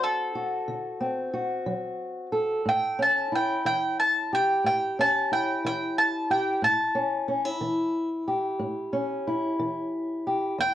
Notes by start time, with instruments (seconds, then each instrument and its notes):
Already playing: steel-string acoustic guitar F#3 C4 F#4 A4
0.04 mandolin A4
0.35 steel-string acoustic guitar F#4
0.68 steel-string acoustic guitar D3
1.01 steel-string acoustic guitar C4
1.34 steel-string acoustic guitar F#4
1.66 steel-string acoustic guitar F#3
2.32 steel-string acoustic guitar A4
2.65 steel-string acoustic guitar A2, mandolin G5
2.99 steel-string acoustic guitar C#4, mandolin A5
3.32 steel-string acoustic guitar E4, mandolin G5
3.65 steel-string acoustic guitar E3, mandolin G5
4.00 mandolin A5
4.33 steel-string acoustic guitar G4, mandolin G5
4.64 steel-string acoustic guitar A2, mandolin G5
4.99 steel-string acoustic guitar C#4, mandolin A5
5.32 steel-string acoustic guitar E4, mandolin G5
5.65 steel-string acoustic guitar E3, mandolin G5
5.98 mandolin A5
6.30 steel-string acoustic guitar G4, mandolin G5
6.62 steel-string acoustic guitar A2, mandolin A5
6.95 steel-string acoustic guitar C#4
7.28 steel-string acoustic guitar C#4
7.45 steel-string acoustic guitar E4
7.61 steel-string acoustic guitar E3
8.28 steel-string acoustic guitar G4
8.59 steel-string acoustic guitar A2
8.93 steel-string acoustic guitar C#4
9.27 steel-string acoustic guitar E4
9.59 steel-string acoustic guitar E3
10.27 steel-string acoustic guitar G4
10.58 steel-string acoustic guitar E2, mandolin G5